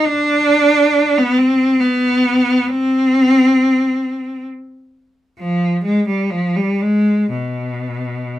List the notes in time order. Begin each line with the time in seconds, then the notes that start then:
0.05 D4
1.18 B3
1.38 C4
1.80 B3
2.68 C4
5.39 F3
5.84 G#3
6.08 G3
6.30 F3
6.56 G3
6.81 G#3
7.32 B2